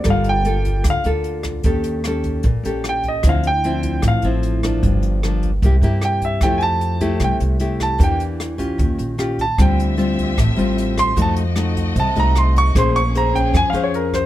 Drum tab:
HH |xxxxxxxx|xxxxxxxx|xxxxxxxx|xxxxxxxx|
SD |r---r--r|--r---r-|r---r--r|--r---r-|
BD |o--oo--o|o--oo--o|o--oo--o|o--oo--o|

HH |xxxxxxxx|xxxxxxxx|xxxxxxxx|xxxxxxxx|
SD |r---r--r|--r---r-|r---r--r|--r---r-|
BD |o--oo--o|o--oo--o|o--oo--o|o--oo--o|

HH |xxxxxxxx|
SD |r---r--r|
BD |o--oo--o|